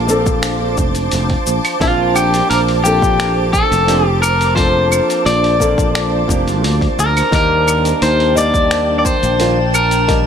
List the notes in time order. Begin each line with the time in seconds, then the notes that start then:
Already playing: A#1 C5 A5 D6
0.07 F3 A#3 C4 D4 A4, shaker
0.26 kick, shaker
0.43 finger snap, open hi-hat, shaker
0.77 F1, kick, shaker
0.95 open hi-hat, shaker
1.11 F1, open hi-hat, shaker
1.30 kick, open hi-hat
1.47 A#1, shaker
1.65 open hi-hat, claves, shaker
1.79 A#1 F3 A#3 C4 D4 F4 A5, kick, open hi-hat, shaker
2.16 G4, claves, shaker
2.34 open hi-hat, shaker
2.50 A#1 A#4, open hi-hat, shaker
2.68 open hi-hat
2.83 F3 A#3 C4 D4 G4 A4, shaker
3.02 kick, shaker
3.20 finger snap, open hi-hat, shaker
3.53 A4, kick, shaker
3.71 F1, open hi-hat, shaker
3.87 F3 A#3 C4 D4 G4, open hi-hat, shaker
4.06 G4
4.22 A#4, claves, shaker
4.41 open hi-hat, shaker
4.55 F3 A#3 C4 D4 A4 C5, kick, open hi-hat, shaker
4.92 claves, shaker
5.10 open hi-hat, shaker
5.26 A#1 D5, open hi-hat, shaker
5.44 open hi-hat
5.59 F3 A#3 C4 D4 A4, kick, shaker
5.78 kick, shaker
5.95 finger snap, open hi-hat, shaker
6.27 F1 F3 A#3 C4 D4 G4, kick, shaker
6.48 open hi-hat, shaker
6.64 D2, open hi-hat, shaker
6.81 kick, open hi-hat
6.99 D2 A#4, shaker
7.17 open hi-hat, claves, shaker
7.31 D#2 D#3 G3 A#3 D4 G4 G5 A5, kick, open hi-hat, shaker
7.35 A#4
7.68 claves, shaker
7.85 open hi-hat, shaker
8.02 D#2 C5, open hi-hat, shaker
8.20 open hi-hat
8.35 D#3 G3 A#3 D4 G4 D5, shaker
8.54 kick, shaker
8.71 finger snap, open hi-hat, shaker
8.99 D5
9.05 C5, kick, shaker
9.23 A#1, open hi-hat, shaker
9.39 D#3 G3 A#3 D4 F4, open hi-hat, shaker
9.74 A#4, claves, shaker
9.91 open hi-hat, shaker
10.07 D#3 G3 A#3 D4 G4, kick, open hi-hat, shaker